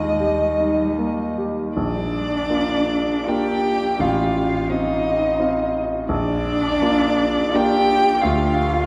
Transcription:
Already playing: D#2 G#3 D#4 D#5
0.20 G3 G4
0.60 D#4
0.98 A#3
1.38 G4
1.76 A#1 D4 D5
2.50 A#3 D4 F4
3.27 A#3 D4 F4 G4 G5
3.99 A1 F4 F5
4.69 C4 D#4 F4 D#5
5.40 C4 F4
6.09 A#1 D4 D5
6.81 A#3 D4 F4
7.54 A#3 D4 F4 G4 G5
8.22 D2 F4 F5

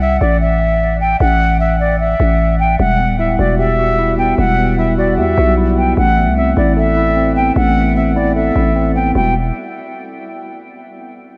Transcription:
Already playing: C2
0.01 E5
0.21 A1 D5
0.41 E5
1.01 G5
1.20 A1 F#5
1.60 E5
1.80 D5
2.00 E5
2.20 A1
2.60 G5
2.79 E1 G3 F#5
2.99 B3
3.09 D1
3.19 E4 E5
3.39 E1 F#4 D5
3.59 G4 E5
3.79 F#4
3.99 E4
4.18 B3 G5
4.38 E1 G3 F#5
4.58 B3
4.78 E4 E5
4.98 F#4 D5
5.18 E2 G4 E5
5.38 B1 F#4
5.58 E4
5.77 B3 G5
5.97 A1 A3 F#5
6.17 B3
6.27 C2
6.37 C4 E5
6.57 A1 E4 D5
6.77 A4 E5
6.97 E4
7.17 C4
7.36 B3 G5
7.56 A1 A3 F#5
7.76 B3
7.96 C4 E5
8.16 E4 D5
8.36 A4 E5
8.56 A1 E4
8.76 C4
8.95 B3 G5
9.15 E1 G3 B3 E4 F#4 G5

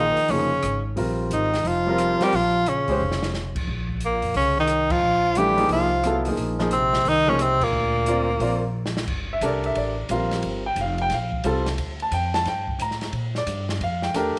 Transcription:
Already playing: A#1 D#3 F3 A#3 D#4 G#4
0.17 muted upright bass stroke, open hi-hat
0.28 F1 C#3 F3 A#3 C#4 D#4 G#4, open hi-hat
0.63 G#1, cross-stick, closed hi-hat
0.96 A#1 G3 C4 F4 A#4, open hi-hat
1.30 G#1 D#3 D#4, closed hi-hat
1.54 snare, open hi-hat
1.64 F1 F3 F4, open hi-hat
1.87 G3 C4 F4 A#4
1.98 cross-stick, closed hi-hat
2.20 G3 C4 F4 G4 A#4, muted upright bass stroke, snare, open hi-hat
2.32 A#1 F3 F4, open hi-hat
2.66 C#3 C#4, closed hi-hat
2.88 G#3 C#4 G4 C5, kick, open hi-hat
3.00 F1
3.12 snare
3.23 snare
3.34 snare
3.55 F2, kick, crash
3.67 A#1
3.89 kick
4.00 closed hi-hat
4.05 A#2 A#3
4.22 F2, open hi-hat
4.34 C2 C#3 C#4, open hi-hat
4.58 D#3 D#4
4.68 cross-stick, closed hi-hat
4.90 F3 F4, kick, crash
5.01 A#1
5.35 E3 G3 A3 D4 G4, closed hi-hat
5.57 F3 A#3 D#4 G#4, open hi-hat
5.68 C2 F3, open hi-hat
5.72 F4
6.04 F#3 B3 E4 A4, cross-stick, closed hi-hat
6.25 F3 A#3 D#4 G#4, open hi-hat
6.36 A#1, open hi-hat
6.59 F3 A#3 D#4 G#4, snare
6.71 C3 C4, closed hi-hat
6.93 snare
7.05 C2 D#3, open hi-hat
7.09 D#4
7.27 C#3 F3 A#3 C#4 D#4 G#4
7.39 C3 C4, cross-stick, closed hi-hat
7.61 A#2 A#3, kick, crash
7.72 D2
8.06 C4 F4 A#4 D5, closed hi-hat
8.39 A#1 C4 F4 A#4 D5, open hi-hat
8.86 snare
8.97 snare
9.07 G1, kick, crash
9.33 E5
9.41 C2 D4 G4 A4 A#4, hi-hat pedal, ride
9.46 D5
9.64 E5, ride
9.75 A1 D5, ride
10.09 A#1 G3 C4 F4 A#4 F5, hi-hat pedal, ride
10.31 snare, ride
10.42 G1, ride
10.66 G5
10.76 F1, hi-hat pedal, ride
10.81 F5
10.98 G5, ride
11.10 A#1 F5, snare, ride
11.32 kick
11.44 C2 G3 C4 F4 A4 A5, hi-hat pedal, ride
11.66 snare, ride
11.77 D2, ride
12.00 A5, ride
12.11 F2 G5, hi-hat pedal, ride
12.34 A5, snare, ride
12.45 G2 G5, snare, ride
12.68 kick
12.79 A2 A#5, hi-hat pedal, ride
12.91 snare
13.01 snare, ride
13.12 A#2, ride
13.35 D5, snare
13.46 G2, hi-hat pedal, ride
13.69 snare
13.80 F2 F5, ride
14.02 G5, snare
14.14 E2 A3 D4 G4 A#4 G5, hi-hat pedal, ride

